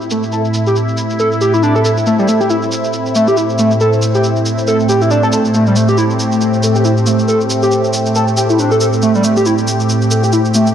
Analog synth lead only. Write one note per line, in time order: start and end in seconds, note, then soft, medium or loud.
0.11 0.23 A3 medium
0.32 0.42 A4 medium
0.67 0.76 G4 medium
1.19 1.29 A4 medium
1.41 1.53 G4 medium
1.54 1.62 E4 medium
1.63 1.75 D4 loud
1.76 1.80 A4 loud
1.85 1.90 A4 medium
2.06 2.16 A3 medium
2.19 2.27 G3 loud
2.28 2.40 A3 medium
2.40 2.49 G4 medium
2.50 2.56 E4 medium
3.15 3.27 A3 medium
3.28 3.36 G4 medium
3.37 3.42 E4 medium
3.59 3.71 A3 medium
3.81 3.90 A4 medium
4.15 4.23 G4 medium
4.68 4.77 A4 medium
4.89 5.01 G4 medium
5.02 5.10 E4 medium
5.11 5.23 D4 medium
5.23 5.27 A4 loud
5.33 5.38 A4 medium
5.54 5.64 A3 medium
5.67 5.75 G3 medium
5.76 5.88 A3 medium
5.89 5.97 G4 medium
5.98 6.03 E4 medium
6.63 6.75 A3 medium
6.75 6.84 G4 medium
6.85 6.90 E4 medium
7.07 7.18 A3 medium
7.28 7.37 A4 medium
7.63 7.71 G4 medium
8.15 8.25 A4 medium
8.37 8.49 G4 medium
8.50 8.58 E4 medium
8.59 8.71 D4 loud
8.71 8.75 A4 loud
8.81 8.86 A4 medium
9.02 9.12 A3 medium
9.15 9.23 G3 medium
9.24 9.36 A3 medium
9.37 9.45 G4 medium
9.46 9.51 E4 medium
10.11 10.23 A3 medium
10.24 10.32 G4 medium
10.33 10.38 E4 medium
10.55 10.66 A3 medium